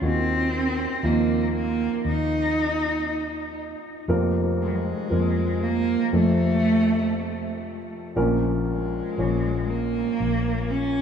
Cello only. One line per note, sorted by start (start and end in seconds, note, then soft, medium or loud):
0.03 1.06 C4 medium
1.04 1.54 A#3 medium
1.55 2.02 A#3 medium
2.08 3.55 D#4 medium
4.62 4.69 G#3 medium
4.67 4.76 F#3 medium
4.75 5.64 G#3 medium
5.63 6.13 A#3 medium
6.14 7.62 A3 medium
8.67 9.71 G#3 medium
9.70 10.72 A#3 medium
10.70 11.02 C#4 medium